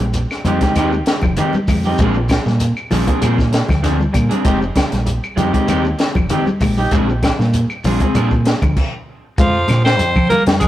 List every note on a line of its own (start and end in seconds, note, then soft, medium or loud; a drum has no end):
0.00 0.25 A#1 medium
0.00 muted clean electric guitar stroke soft
0.00 closed hi-hat soft
0.00 high conga medium
0.14 muted clean electric guitar stroke soft
0.14 closed hi-hat medium
0.14 shekere medium
0.31 snare soft
0.31 claves medium
0.31 shekere soft
0.44 0.58 F2 medium
0.44 0.56 F3 medium
0.44 0.62 G#3 medium
0.44 0.61 C4 medium
0.44 0.61 D#4 medium
0.44 0.60 G4 medium
0.44 closed hi-hat soft
0.44 high conga medium
0.44 low conga medium
0.44 shekere medium
0.61 0.81 G#3 medium
0.61 0.75 C4 soft
0.61 0.76 D#4 soft
0.61 0.76 G4 medium
0.61 kick medium
0.61 snare soft
0.61 closed hi-hat soft
0.61 shekere soft
0.76 1.01 D#2 medium
0.76 0.92 G#3 medium
0.76 0.92 C4 medium
0.76 0.92 D#4 medium
0.76 0.91 G4 medium
0.76 closed hi-hat medium
0.76 claves medium
0.76 shekere medium
0.92 muted clean electric guitar stroke soft
0.92 shekere soft
1.06 muted clean electric guitar stroke soft
1.06 snare medium
1.06 closed hi-hat medium
1.06 shekere medium
1.22 1.35 F1 medium
1.22 1.32 F3 medium
1.22 kick medium
1.22 high conga medium
1.22 claves medium
1.22 shekere soft
1.37 1.56 D#3 medium
1.37 1.54 G#3 medium
1.37 1.54 C4 medium
1.37 1.54 D#4 medium
1.37 1.54 G4 medium
1.37 closed hi-hat medium
1.37 low conga medium
1.37 shekere medium
1.53 muted fingered electric bass stroke soft
1.53 muted clean electric guitar stroke soft
1.53 high conga medium
1.53 shekere soft
1.68 1.93 F2 medium
1.68 1.87 G#3 medium
1.68 muted clean electric guitar stroke soft
1.68 kick medium
1.68 open hi-hat medium
1.68 low conga medium
1.68 claves medium
1.68 shekere medium
1.84 1.99 C4 soft
1.84 2.00 D#4 soft
1.84 1.99 G4 medium
1.84 high conga medium
1.84 shekere soft
1.98 2.37 A#1 medium
1.98 2.16 F3 medium
1.98 2.18 G#3 medium
1.98 2.16 C4 medium
1.98 2.16 D4 medium
1.98 2.15 G#4 medium
1.98 kick medium
1.98 closed hi-hat medium
1.98 shekere medium
2.14 muted clean electric guitar stroke soft
2.14 shekere soft
2.29 muted clean electric guitar stroke soft
2.29 kick medium
2.29 snare medium
2.29 closed hi-hat soft
2.29 high conga medium
2.29 claves medium
2.29 shekere medium
2.46 2.71 A#2 medium
2.46 muted clean electric guitar stroke soft
2.46 snare soft
2.46 high conga medium
2.46 shekere soft
2.60 muted clean electric guitar stroke soft
2.60 closed hi-hat medium
2.60 shekere medium
2.77 claves medium
2.77 shekere soft
2.91 3.05 A#1 medium
2.91 3.07 F3 medium
2.91 3.01 F3 medium
2.91 3.07 C4 medium
2.91 3.07 D4 medium
2.91 3.06 G#4 medium
2.91 snare soft
2.91 open hi-hat medium
2.91 high conga medium
2.91 low conga medium
2.91 shekere medium
3.07 3.26 A#3 medium
3.07 3.21 C4 soft
3.07 3.21 D4 soft
3.07 3.21 G#4 medium
3.07 kick medium
3.07 closed hi-hat medium
3.07 shekere soft
3.21 3.61 A#2 loud
3.21 3.38 F3 medium
3.21 3.37 C4 medium
3.21 3.37 G#4 loud
3.21 muted clean electric guitar stroke medium
3.21 closed hi-hat medium
3.21 high conga medium
3.21 claves medium
3.21 shekere medium
3.38 muted clean electric guitar stroke soft
3.38 kick medium
3.38 snare soft
3.38 shekere soft
3.52 muted clean electric guitar stroke soft
3.52 snare medium
3.52 closed hi-hat medium
3.52 shekere medium
3.69 4.06 D2 medium
3.69 3.78 F3 medium
3.69 kick medium
3.69 snare soft
3.69 high conga medium
3.69 claves medium
3.69 shekere soft
3.83 4.02 D3 medium
3.83 3.99 F3 medium
3.83 3.99 C4 medium
3.83 3.98 D4 medium
3.83 3.98 G#4 medium
3.83 snare soft
3.83 closed hi-hat medium
3.83 shekere medium
3.99 muted clean electric guitar stroke soft
3.99 high conga medium
3.99 shekere soft
4.13 4.28 A#2 medium
4.13 4.32 G3 medium
4.13 muted clean electric guitar stroke soft
4.13 kick medium
4.13 closed hi-hat soft
4.13 low conga medium
4.13 claves medium
4.13 shekere medium
4.29 4.43 C4 soft
4.29 4.45 D4 medium
4.29 4.45 G#4 medium
4.29 closed hi-hat soft
4.29 high conga medium
4.29 shekere soft
4.45 4.70 F1 medium
4.45 4.64 G#3 medium
4.45 4.60 C4 medium
4.45 4.59 D#4 medium
4.45 4.59 G4 medium
4.45 muted clean electric guitar stroke medium
4.45 kick medium
4.45 closed hi-hat medium
4.45 shekere medium
4.60 muted clean electric guitar stroke soft
4.60 shekere soft
4.75 muted clean electric guitar stroke soft
4.75 kick medium
4.75 snare medium
4.75 closed hi-hat soft
4.75 high conga medium
4.75 low conga medium
4.75 claves medium
4.75 shekere medium
4.91 5.18 A#1 medium
4.91 muted clean electric guitar stroke soft
4.91 snare soft
4.91 closed hi-hat soft
4.91 high conga medium
4.91 shekere soft
5.06 muted clean electric guitar stroke soft
5.06 closed hi-hat medium
5.06 shekere medium
5.24 claves medium
5.24 shekere soft
5.36 5.51 F2 medium
5.36 5.47 F3 medium
5.36 5.53 G#3 medium
5.36 5.53 C4 medium
5.36 5.52 D#4 medium
5.36 5.52 G4 medium
5.36 closed hi-hat soft
5.36 high conga medium
5.36 low conga medium
5.36 shekere medium
5.53 5.72 G#3 medium
5.53 5.67 C4 soft
5.53 5.67 D#4 medium
5.53 5.67 G4 medium
5.53 kick medium
5.53 closed hi-hat soft
5.53 shekere soft
5.67 5.94 D#2 medium
5.67 5.84 G#3 medium
5.67 5.84 C4 medium
5.67 5.83 D#4 medium
5.67 5.83 G4 medium
5.67 closed hi-hat medium
5.67 high conga medium
5.67 claves medium
5.67 shekere medium
5.85 muted clean electric guitar stroke soft
5.85 shekere soft
5.99 muted clean electric guitar stroke soft
5.99 snare medium
5.99 closed hi-hat soft
5.99 shekere medium
6.15 6.27 F1 medium
6.15 6.24 F3 medium
6.15 kick medium
6.15 high conga medium
6.15 claves medium
6.15 shekere soft
6.30 6.48 D#3 medium
6.30 6.46 G#3 medium
6.30 6.46 C4 medium
6.30 6.46 D#4 medium
6.30 6.45 G4 medium
6.30 closed hi-hat medium
6.30 low conga medium
6.30 shekere medium
6.46 muted fingered electric bass stroke soft
6.46 muted clean electric guitar stroke soft
6.46 high conga medium
6.46 shekere soft
6.61 6.86 A#1 medium
6.61 6.80 G#3 medium
6.61 muted clean electric guitar stroke soft
6.61 kick medium
6.61 open hi-hat medium
6.61 low conga medium
6.61 claves medium
6.61 shekere medium
6.77 6.92 D#4 medium
6.77 6.92 G4 soft
6.77 muted clean electric guitar stroke soft
6.77 high conga medium
6.77 shekere soft
6.91 7.30 A#1 medium
6.91 7.08 F3 medium
6.91 7.10 G#3 medium
6.91 7.08 C4 medium
6.91 7.08 D4 medium
6.91 7.08 G#4 medium
6.91 kick medium
6.91 closed hi-hat medium
6.91 shekere medium
7.09 muted clean electric guitar stroke soft
7.09 shekere soft
7.23 muted clean electric guitar stroke soft
7.23 kick medium
7.23 snare medium
7.23 closed hi-hat soft
7.23 high conga medium
7.23 low conga medium
7.23 claves medium
7.23 shekere medium
7.39 7.64 A#2 medium
7.39 muted clean electric guitar stroke soft
7.39 snare soft
7.39 high conga medium
7.39 shekere soft
7.54 muted clean electric guitar stroke soft
7.54 closed hi-hat medium
7.54 shekere medium
7.70 claves medium
7.70 shekere soft
7.84 7.97 A#1 medium
7.84 7.94 F3 medium
7.84 8.01 F3 medium
7.84 8.01 C4 medium
7.84 8.01 D4 medium
7.84 8.00 G#4 medium
7.84 open hi-hat medium
7.84 high conga medium
7.84 low conga medium
7.84 shekere medium
8.00 8.19 G#3 medium
8.00 8.14 C4 soft
8.00 8.14 G#4 medium
8.00 kick medium
8.00 closed hi-hat soft
8.00 shekere soft
8.14 8.53 A#2 medium
8.14 8.31 F3 medium
8.14 8.31 C4 medium
8.14 8.30 D4 medium
8.14 8.30 G#4 medium
8.14 closed hi-hat medium
8.14 high conga medium
8.14 claves medium
8.14 shekere medium
8.31 muted clean electric guitar stroke soft
8.31 kick medium
8.31 shekere soft
8.45 muted clean electric guitar stroke soft
8.45 snare medium
8.45 closed hi-hat medium
8.45 shekere medium
8.62 8.74 D2 medium
8.62 8.71 F3 medium
8.62 kick medium
8.62 high conga medium
8.62 claves medium
8.62 shekere soft
8.77 kick medium
8.77 crash medium
9.38 9.63 F2 loud
9.38 9.82 F3 medium
9.38 9.56 G#3 medium
9.38 9.83 F4 medium
9.38 kick medium
9.38 closed hi-hat medium
9.38 shekere medium
9.68 10.00 A#2 medium
9.68 snare soft
9.68 closed hi-hat soft
9.68 high conga medium
9.68 low conga medium
9.68 claves medium
9.68 shekere soft
9.84 10.26 C4 medium
9.84 10.27 C5 loud
9.84 snare medium
9.99 10.13 F2 medium
9.99 closed hi-hat medium
9.99 high conga soft
9.99 shekere medium
10.16 10.28 F3 medium
10.16 kick medium
10.16 claves medium
10.29 10.40 F3 medium
10.29 10.43 A#3 medium
10.29 10.43 A#4 medium
10.29 closed hi-hat medium
10.29 high conga medium
10.29 low conga medium
10.29 shekere soft
10.47 10.59 F2 medium
10.47 10.65 G3 medium
10.47 snare medium
10.47 closed hi-hat medium
10.60 10.68 F3 medium
10.60 10.68 G#3 medium
10.60 10.68 G#4 loud
10.60 kick medium
10.60 closed hi-hat medium
10.60 high conga soft
10.60 claves medium
10.60 shekere medium